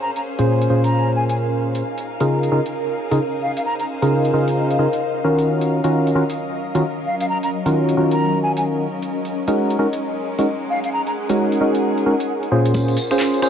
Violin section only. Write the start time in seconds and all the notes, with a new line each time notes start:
Already playing: C#4 G#4 C5 F5
1.83 D#4 G#4 A#4
3.65 C5
5.47 C#4 A#4
8.88 G#3 D#4
10.70 G#4
12.74 C#4 F4 G#4 C5